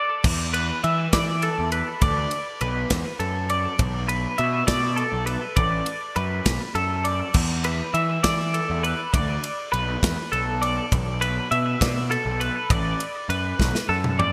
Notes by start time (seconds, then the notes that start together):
Already playing: D5
0.24 E2, kick, crash
0.54 B4, ride
0.84 E3 E5, ride
1.13 E3 D5, kick, snare, ride
1.42 A4, ride
1.59 E2
1.72 B4, ride
2.01 D2 D5, kick, ride
2.31 ride
2.61 B1 B4, ride
2.90 E2, kick, snare, ride
3.20 F#2 A4, ride
3.50 D5, ride
3.79 B1, kick, ride
4.09 B4, ride
4.38 B2 E5, ride
4.67 B2 D5, kick, snare, ride
4.96 A4, ride
5.13 B1
5.26 B4, ride
5.56 A1 D5, kick, ride
5.86 ride
6.16 F#2 B4, ride
6.46 B1, kick, snare, ride
6.75 F#2 A4, ride
7.04 D5, ride
7.34 E2, kick, crash
7.64 B4, ride
7.94 E3 E5, ride
8.23 E3 D5, kick, snare, ride
8.54 A4, ride
8.70 E2
8.83 B4, ride
9.13 D2 D5, kick, ride
9.44 ride
9.72 B1 B4, ride
10.03 E2, kick, snare, ride
10.32 B1 A4, ride
10.62 D5, ride
10.92 B1, kick, ride
11.21 B4, ride
11.51 B2 E5, ride
11.81 B2 D5, kick, snare, ride
12.11 A4, ride
12.26 B1
12.40 B4, ride
12.70 A1 D5, kick, ride
13.00 ride
13.29 F#2 B4, ride
13.59 B1, kick, snare
13.75 snare
13.89 F#2 A4
14.04 mid tom
14.19 D5, mid tom